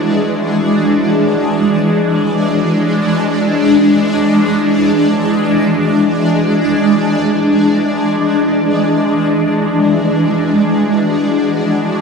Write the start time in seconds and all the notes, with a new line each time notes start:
Already playing: E3 G#3 D4 F#4 C#5
7.04 E3
9.29 F#4